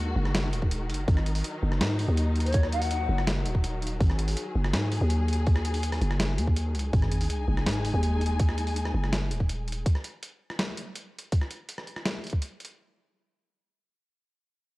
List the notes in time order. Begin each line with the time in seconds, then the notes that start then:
Already playing: D#2 D#3 G#3 F#4
0.16 F#1
0.25 cross-stick
0.35 snare, closed hi-hat
0.53 D#1, closed hi-hat
0.62 kick
0.71 closed hi-hat
0.90 F#1, closed hi-hat
0.94 closed hi-hat
1.08 G#1 F#3 D#4, kick, open hi-hat
1.17 cross-stick
1.26 closed hi-hat
1.35 open hi-hat
1.44 closed hi-hat
1.63 F#1
1.72 cross-stick
1.81 G#2, cross-stick, snare, closed hi-hat
1.99 open hi-hat
2.08 D#2
2.17 closed hi-hat
2.36 closed hi-hat
2.40 closed hi-hat
2.45 C#5, closed hi-hat
2.53 closed hi-hat
2.54 kick, closed hi-hat
2.63 cross-stick
2.72 F#5, closed hi-hat
2.82 open hi-hat
2.91 closed hi-hat
3.09 F#1
3.18 cross-stick
3.27 snare, closed hi-hat
3.46 D#1, closed hi-hat
3.55 kick
3.64 closed hi-hat
3.82 closed hi-hat
3.87 closed hi-hat
4.00 G#1 G#4, kick, open hi-hat
4.10 cross-stick
4.19 closed hi-hat
4.28 open hi-hat
4.37 closed hi-hat
4.55 F#1
4.64 cross-stick
4.73 G#2, cross-stick, snare, closed hi-hat
4.92 open hi-hat
5.01 D#2
5.10 closed hi-hat
5.28 closed hi-hat
5.33 closed hi-hat
5.47 kick, open hi-hat
5.56 cross-stick
5.65 closed hi-hat
5.74 open hi-hat
5.83 closed hi-hat
5.92 cross-stick, open hi-hat
6.01 F#1, closed hi-hat
6.11 cross-stick
6.20 snare, closed hi-hat
6.38 D#2, closed hi-hat
6.48 kick
6.56 closed hi-hat
6.75 C#2, closed hi-hat
6.79 closed hi-hat
6.93 G#1 G#3 D#4 G#4 G#5, kick, open hi-hat, sub drop
7.02 cross-stick
7.12 closed hi-hat
7.21 open hi-hat
7.30 closed hi-hat
7.48 F#1
7.57 cross-stick
7.66 G#2, cross-stick, snare, closed hi-hat
7.69 closed hi-hat
7.71 closed hi-hat
7.73 closed hi-hat
7.85 open hi-hat
7.94 D#2
8.03 closed hi-hat
8.21 closed hi-hat
8.26 closed hi-hat
8.39 kick, closed hi-hat
8.49 cross-stick
8.58 closed hi-hat
8.67 open hi-hat
8.76 closed hi-hat
8.85 cross-stick
8.94 F#1
9.04 cross-stick
9.13 snare, closed hi-hat
9.31 D#1, closed hi-hat
9.40 kick
9.49 closed hi-hat
9.68 closed hi-hat
9.72 closed hi-hat
9.86 kick, closed hi-hat
9.95 cross-stick
10.04 closed hi-hat
10.23 closed hi-hat
10.50 cross-stick
10.59 cross-stick, snare, closed hi-hat
10.77 closed hi-hat
10.95 closed hi-hat
11.19 closed hi-hat
11.32 kick, closed hi-hat
11.41 cross-stick
11.51 closed hi-hat
11.69 closed hi-hat
11.78 cross-stick
11.87 closed hi-hat
11.96 cross-stick
12.06 snare, closed hi-hat
12.24 closed hi-hat
12.27 closed hi-hat
12.30 kick, closed hi-hat
12.42 closed hi-hat
12.60 closed hi-hat
12.65 closed hi-hat